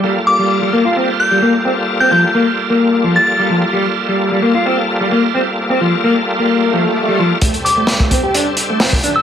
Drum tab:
HH |----------------|----------------|----------------|----------------|
SD |----------------|----------------|----------------|----------------|
BD |----------------|----------------|----------------|----------------|

HH |xxx-x-x-x-x-o-x-|
SD |----o-------o---|
BD |o----oo------o--|